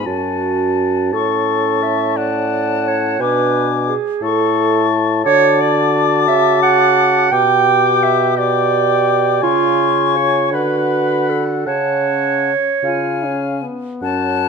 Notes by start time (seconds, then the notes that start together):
Already playing: G#5
0.06 F#2 C#4 F#4 A5
1.13 A2 A4 A5 C#6
1.83 E5
2.16 D5 F#5 A5
2.88 C#5
3.19 B2 D4 B4 G#5 D6
3.88 G#4
4.22 A2 E4 A4 A5 C#6
5.24 D3 F#4 C#5 A5 D6
5.60 D5
6.28 C#3 E5
6.63 F#5
7.31 B2 G4 G5 D6
8.03 E5
8.37 G4 D5 G5 D6
9.42 C#3 F4 G#5 C#6
10.16 C#5
10.52 D3 F#4 B4 F#5 B5
11.30 A4
11.66 C#3 C#4 C#5 F#5 A5
12.83 C#3 F4 F5 G#5
13.25 C#4
13.63 B3
14.02 F#2 C#4 C#5 F#5 A5